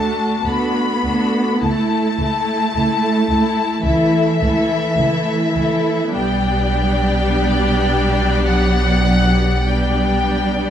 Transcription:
Already playing: A3 D4 F#4 A4 A5
0.45 D2 A3 B3 D4 F#4 A4 B5
1.04 D2 A3 D4 F#4 A4
1.61 C#2 A3 E4 A4 A5
2.19 C#2 A3 E4 A4
2.73 C#2 A3 E4 A4
3.29 C#2 A3 E4 A4
3.84 C#2 E3 A3 E4 A4 E5
4.40 C#2 A3 E4 A4
4.98 C#2 A3 E4 A4
5.54 C#2 A3 E4 A4
6.13 B1 G3 B3 D4 G4 D5 G5
8.45 F#3 F#5
9.65 G3 B3 D4 G4 D5 G5

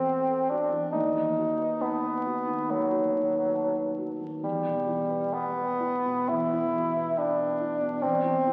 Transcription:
Already playing: E2 E3 C4 F#4 A4
0.07 F#5
0.28 A4
0.50 D4 F#4
0.72 E3
0.92 D#2 D#4
1.16 D#3
1.38 F#4
1.60 B4
1.81 B3 A5
2.04 B4
2.26 F#4
2.47 D#3
2.69 D#2 F#3
2.92 F#4
3.13 D#3
3.34 B4
3.55 A5
3.77 B4
3.98 F#4
4.20 D#3
4.43 E2 G3
4.64 B2
4.87 E4
5.09 B4
5.32 B3 G5
5.56 B4
5.80 E4
6.06 B2
6.28 E2 E4
6.53 E4
6.76 B2
6.95 B4
7.17 D4 G5
7.39 B4
7.61 E4
7.81 B2
8.02 E2 C4
8.24 E3
8.47 E4

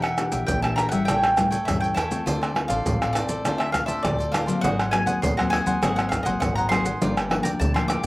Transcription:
Already playing: E1 E3
0.02 A#4 E5 F#5 G5, pandeiro, tamborim, maracas
0.17 D4 G4 A#4, muted cavaquinho stroke, pandeiro, tamborim, maracas
0.32 A#1 A#4 E5 G5, pandeiro, maracas
0.47 A#1 E3 G5, pandeiro, maracas, surdo
0.62 D4 G4 A#4 E5 G5 A5, pandeiro, tamborim, maracas
0.76 D4 A#4 E5 G5 A#5, pandeiro, tamborim, maracas
0.89 G#1 G3 C#4 E5 F#5 G5, pandeiro, maracas
0.93 E4 A#4
1.05 A1 A2 E4 A4 C#5 G5, pandeiro, tamborim, maracas, surdo
1.10 G5
1.22 A4 C#5 G5, pandeiro, tamborim, maracas
1.36 A2 G3 C#4 E4, muted cavaquinho stroke, pandeiro, tamborim, maracas, surdo
1.51 A4 C#5 G5, pandeiro, maracas
1.65 G2 E3 G3 C#4 E4 E5, pandeiro, tamborim, maracas, surdo
1.80 A4 C#5 G5, pandeiro, maracas
1.94 E2 E4 A4 C#5 G5 A5, pandeiro, tamborim, maracas
2.10 A3 C4 F4 A4 C#5 G5, pandeiro, maracas
2.25 D2 D3 F4 A4 C5 D5, pandeiro, maracas, surdo
2.41 A4 C5 D5, pandeiro, tamborim, maracas
2.55 A3 C4 F4, muted cavaquinho stroke, pandeiro, tamborim
2.68 A1 A4 C5 D5 F5, pandeiro, maracas
2.85 A1 A2, pandeiro, maracas, surdo
3.01 A3 C4 F4 A4 C5 D5, pandeiro, tamborim, maracas
3.13 F4 A4 C5 D5, pandeiro, tamborim, maracas
3.28 A1 A4 C5 D5, pandeiro, maracas
3.45 D2 D3 A3 C4 F4 A4 C5 D5, pandeiro, tamborim, maracas, surdo
3.58 A4 C5 D5 E5, pandeiro, tamborim, maracas
3.72 A3 C4 F4 F5, muted cavaquinho stroke, pandeiro, tamborim, maracas, surdo
3.86 D2 A4 C5 D5 E5, pandeiro, maracas
4.03 D2 A2 D5, pandeiro, tamborim, maracas, surdo
4.18 A4 C5 D5, pandeiro, maracas
4.32 A3 C4 F4 A4 C5 D5 F5, pandeiro, tamborim, maracas
4.46 F#3 A#3 C4 A4 C5 D5, pandeiro, maracas
4.61 G#1 G#2 F#4 G#4 C5 F#5, pandeiro, maracas, surdo
4.79 G#4 C5 F#5, pandeiro, tamborim, maracas
4.91 F#3 A#3 C4 G#5, muted cavaquinho stroke, pandeiro, tamborim, maracas
5.06 D#2 G#4 C5 F#5, pandeiro, maracas
5.22 D#2 D#3 C6, pandeiro, maracas, surdo
5.37 F#3 A#3 C4 G#4 C5 F#5 A#5, pandeiro, tamborim, maracas
5.50 F#4 G#4 C5 F#5 G#5, pandeiro, tamborim
5.66 D#2 F#3 A#3 C4 G#4 C5 F#5, pandeiro, maracas
5.82 G#1 G#2 F#3 A#3 C4 F#4 G#4 C5 F#5, pandeiro, tamborim, maracas, surdo
5.96 G#4 C5 F#5, pandeiro, tamborim, maracas
6.09 F5, muted cavaquinho stroke, pandeiro, tamborim, maracas, surdo
6.23 G#1 F#3 A#3 C4 G#4 C5 D#5 F#5, pandeiro, maracas
6.40 G#1 D#3 F#5, pandeiro, tamborim, maracas, surdo
6.56 G#4 C5 F#5 A#5, pandeiro, maracas
6.69 F#3 A#3 C4 F#4 G#4 C5 F#5 C6, pandeiro, tamborim, maracas
6.85 G#4 C5 F#5, pandeiro, maracas
7.01 G1 G2 F3 A#3 D4 F4 A#4 D5 G5, pandeiro, maracas, surdo
7.17 A#4 D5 G5, pandeiro, tamborim, maracas
7.29 F3 A#3 D4, muted cavaquinho stroke, pandeiro, tamborim
7.43 D2 A#4 D5 G5 A#5, pandeiro, maracas
7.59 D2 D3 A5, pandeiro, maracas, surdo
7.74 F3 A#3 D4 A#4 D5 G5 C6, pandeiro, tamborim, maracas
7.88 F4 A#4 D5 G5 D6, pandeiro, tamborim, maracas

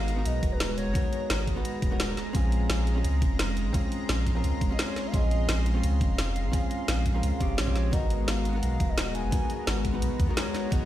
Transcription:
Already playing: G#1 G#3 B3 D#4 F#4 A#4 F5 A#5
0.08 closed hi-hat
0.16 B3 D#4 F#4 A#4
0.25 B1 D#5, closed hi-hat
0.43 D#1, kick, closed hi-hat
0.52 B4
0.60 snare, closed hi-hat
0.78 C#5, closed hi-hat
0.87 G#1
0.93 B3 D#4 F#4 A#4, kick, closed hi-hat
1.13 closed hi-hat
1.30 G#1, snare, closed hi-hat
1.47 kick, closed hi-hat
1.56 B3 D#4 F#4 B4
1.65 closed hi-hat
1.82 D#1, kick, closed hi-hat
1.91 B3 D#4 F#4 A#4
2.00 snare, closed hi-hat
2.17 C6, snare, closed hi-hat
2.33 A#1 C4 C#4 F4 G#4, kick, closed hi-hat
2.52 closed hi-hat
2.70 A#1, snare, closed hi-hat
2.87 closed hi-hat
2.95 C4 C#4 F4 G#4
3.04 C#2, closed hi-hat
3.22 F1, kick, closed hi-hat
3.39 snare, closed hi-hat
3.57 closed hi-hat
3.66 A#1
3.73 C4 C#4 F4 G#4, kick, closed hi-hat
3.92 closed hi-hat
4.09 A#1, snare, closed hi-hat
4.26 kick, closed hi-hat
4.35 C4 C#4 F4 A#4
4.44 C#2, closed hi-hat
4.61 F1, kick, closed hi-hat
4.69 C4 C#4 F4 G#4 D#5
4.79 C#5, snare, closed hi-hat
4.96 snare, closed hi-hat
5.07 F5
5.12 A#1 C4 C#4 F4 G#4 D#5, kick, closed hi-hat
5.31 closed hi-hat
5.49 A#1, snare, closed hi-hat
5.66 closed hi-hat
5.74 C4 C#4 F4 G#4
5.83 C#2 F5, closed hi-hat
6.01 F1, kick, closed hi-hat
6.18 snare, closed hi-hat
6.36 closed hi-hat
6.45 A#1
6.52 C4 C#4 F4 G#4, kick, closed hi-hat
6.71 closed hi-hat
6.88 A#1, snare, closed hi-hat
7.06 kick, closed hi-hat
7.14 C4 C#4 F4 A#4
7.23 C#2, closed hi-hat
7.40 F1 C4 C#4 F4 G4, kick, closed hi-hat
7.58 A#1 C#5, snare, closed hi-hat
7.66 C4 C#4 F4 G4, kick
7.76 snare, closed hi-hat
7.91 G#1 G#3 B3 D#4 F#4 A#4 D#5 A#5, kick, closed hi-hat
8.10 closed hi-hat
8.28 G#1 F5, snare, closed hi-hat
8.45 closed hi-hat
8.53 B3 D#4 F#4 A#4
8.62 B1 F5, closed hi-hat
8.80 D#1, kick, closed hi-hat
8.89 D#5
8.98 snare, closed hi-hat
9.15 G#5, closed hi-hat
9.24 G#1
9.31 B3 D#4 F#4 A#4, kick, closed hi-hat
9.50 closed hi-hat
9.67 G#1, snare, closed hi-hat
9.85 kick, closed hi-hat
9.93 B3 D#4 F#4 B4
10.02 B1, closed hi-hat
10.20 D#2, kick, closed hi-hat
10.27 B3 D#4 F#4 A#4
10.37 C#5, snare, closed hi-hat
10.55 snare, closed hi-hat
10.70 G#1 B3 D#4 F#4 A#4 D#5, kick, closed hi-hat

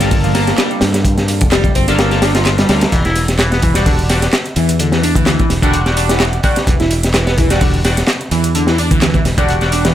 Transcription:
Already playing: G1 G3 A#3 D4 F4 A4
0.00 G3 A#3 F4 A4, snare, closed hi-hat
0.11 kick, closed hi-hat, open hi-hat
0.24 F3, closed hi-hat
0.35 A#3 F4 A4, snare, closed hi-hat, ride
0.47 snare, closed hi-hat
0.58 G3, snare, clap, closed hi-hat
0.71 closed hi-hat
0.81 G2, snare, closed hi-hat, ride
0.94 snare, closed hi-hat
1.05 kick, closed hi-hat
1.18 snare, closed hi-hat
1.28 closed hi-hat, ride
1.41 F1, kick, closed hi-hat
1.52 G3, snare, clap, closed hi-hat
1.64 kick, closed hi-hat
1.75 G1 C4, kick, closed hi-hat, ride
1.88 A#3 D4 F4 A4, snare, closed hi-hat
1.99 A#3, snare, closed hi-hat
2.11 A#3 F4 A4, snare, closed hi-hat
2.22 D4, snare, closed hi-hat, ride
2.35 F4, snare, closed hi-hat
2.45 snare, clap, closed hi-hat
2.58 G3, snare, closed hi-hat
2.69 D2 G3 A#3 F4 A4, snare, closed hi-hat, ride
2.81 snare, closed hi-hat
2.92 E1 E3, kick, closed hi-hat, crash
3.05 E4, snare, closed hi-hat
3.16 closed hi-hat, ride
3.28 snare, closed hi-hat
3.39 E3, snare, clap, closed hi-hat
3.52 B3, snare, closed hi-hat
3.62 E3, kick, closed hi-hat, ride
3.74 G3 D4 F#4, snare, closed hi-hat
3.86 D3, kick, closed hi-hat, open hi-hat
3.99 closed hi-hat
4.09 G3 D4 F#4, snare, closed hi-hat, ride
4.22 snare, closed hi-hat
4.33 snare, clap, closed hi-hat
4.46 closed hi-hat
4.56 E2 E3, closed hi-hat, ride
4.69 closed hi-hat
4.79 D3, closed hi-hat
4.92 E3, snare, closed hi-hat
5.03 D4, closed hi-hat, ride
5.16 D2 E3, kick, closed hi-hat
5.26 E3, snare, clap, closed hi-hat
5.39 E3, kick, closed hi-hat
5.50 E1, snare, closed hi-hat, ride
5.62 D3 G3 D4 F#4, kick, closed hi-hat
5.73 closed hi-hat
5.86 G3 D4 F#4, snare, closed hi-hat
5.97 D4, closed hi-hat, ride
6.09 E3, snare, closed hi-hat
6.20 snare, clap, closed hi-hat
6.33 closed hi-hat
6.43 G3 D4 F#4, kick, closed hi-hat, ride
6.56 snare, closed hi-hat
6.67 E1 E3, kick, closed hi-hat
6.80 E4, snare, closed hi-hat
6.91 closed hi-hat, ride
7.03 snare, closed hi-hat
7.14 E3, snare, clap, closed hi-hat
7.27 B3, snare, closed hi-hat
7.38 E3, kick, closed hi-hat, ride
7.50 G3 D4 F#4, snare, closed hi-hat
7.61 D3, kick, closed hi-hat, open hi-hat
7.74 closed hi-hat
7.85 G3 D4 F#4, snare, closed hi-hat, ride
7.97 snare, closed hi-hat
8.07 snare, clap, closed hi-hat
8.21 closed hi-hat
8.31 E2 E3, closed hi-hat, ride
8.44 closed hi-hat
8.55 D3, closed hi-hat
8.67 E3, snare, closed hi-hat
8.78 D4, closed hi-hat, ride
8.91 D2 E3, kick, closed hi-hat
9.02 E3, snare, clap, closed hi-hat
9.14 E3, kick, closed hi-hat
9.25 E1, snare, closed hi-hat, ride
9.38 D3 G3 D4 F#4, kick, closed hi-hat
9.49 closed hi-hat
9.61 G3 D4 F#4, snare, closed hi-hat
9.72 D4, closed hi-hat, ride
9.85 E3, snare, closed hi-hat

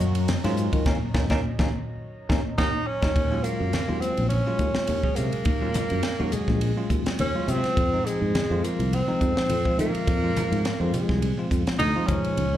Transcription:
Already playing: F#3 A#3 C#4 F#4 C#5 D#5 A#5
0.00 F#2, hi-hat pedal, muted conga
0.15 ride
0.28 snare, ride, high conga
0.44 G#2 F#3 A#3 C#4 F4, snare, ride
0.57 hi-hat pedal
0.73 D#3, kick, ride
0.86 D#2 A#3 C#4 D#4, kick, snare, high conga
1.14 D#2 A#3 C#4 D#4, kick, snare, high conga
1.30 D#2 A#3 C#4 D#4, kick, snare, high conga
1.59 D#2 A#3 C#4 D#4, kick, snare, high conga
2.29 D#2 A#3 C#4 D#4, kick, snare, high conga
2.58 D#2 A#3 C#4 D#4, kick, snare, high conga
2.87 C#4
3.02 D#2 A#3 C#4 D#4, kick, snare, high conga
3.15 D#2, kick, ride, muted conga
3.31 F#3 G#3 C#4 F4
3.43 A#3, hi-hat pedal, ride
3.60 F#2
3.73 snare, ride, muted conga, high conga
3.88 D#2 F#3 G#3 C#4 F4
4.00 C4, hi-hat pedal, ride
4.17 A#1, ride
4.29 C#4, ride, muted conga, high conga
4.46 F#3 G#3 C#4 F4
4.59 D#2, kick, hi-hat pedal, ride, muted conga
4.75 muted fretless electric bass stroke, snare
4.87 D#2, ride, high conga
5.03 F#3 G#3 C#4 G#4, kick
5.15 C3 A#3, hi-hat pedal, ride
5.32 muted fretless electric bass stroke, ride
5.45 D#2, kick, ride, muted conga
5.61 F#3 G#3 C#4 F4
5.74 hi-hat pedal, ride, high conga
5.90 F#2, ride
6.03 snare, ride, muted conga
6.19 D#2 F#3 G#3 C#4 F#4
6.32 G#3, hi-hat pedal, ride, low conga
6.48 A#1, kick, snare
6.61 ride, muted conga
6.77 F#3 G#3 C#4 F4
6.90 D#2, kick, hi-hat pedal, ride
7.06 muted fretless electric bass stroke, snare, ride
7.19 D#2 C#4, ride, high conga
7.35 F#3 G#3 C#4 F4
7.48 C3 C4, hi-hat pedal, ride, high conga
7.63 muted fretless electric bass stroke, snare, ride
7.77 F2, kick, ride
7.93 F3 G#3 C4 D#4
8.06 G#3, hi-hat pedal, ride
8.21 G#2
8.35 snare, ride, muted conga, high conga
8.50 F2 F3 G#3 C4 F4
8.64 A#3, hi-hat pedal, ride
8.79 C2, ride
8.93 C4, ride, muted conga, high conga
9.07 F3 G#3 C4 D#4
9.21 F2, kick, hi-hat pedal, ride
9.37 muted fretless electric bass stroke, snare
9.49 F2, ride, high conga
9.65 F3 G#3 C4 F4, kick
9.78 D#3 A#3, hi-hat pedal, ride
9.95 muted fretless electric bass stroke, ride
10.07 F2, kick, ride
10.23 F3 G#3 C4 F4
10.36 hi-hat pedal, ride, high conga
10.51 G#2, ride
10.65 snare, ride, muted conga
10.80 F2 F3 G#3 C4 F4
10.94 G#3, hi-hat pedal, ride, low conga
11.09 C2, kick, snare
11.22 ride, muted conga
11.37 F3 G#3 C4 F4
11.51 F2, kick, hi-hat pedal, ride, muted conga
11.67 muted fretless electric bass stroke, snare, ride
11.79 D2 D#4, ride, high conga
11.95 F3 G#3 C4 F4
12.07 C#2 F3 G#3 A#3 C#4 D#4, kick, hi-hat pedal, ride, high conga
12.24 muted fretless electric bass stroke, ride
12.37 C#2, ride, muted conga
12.53 F3

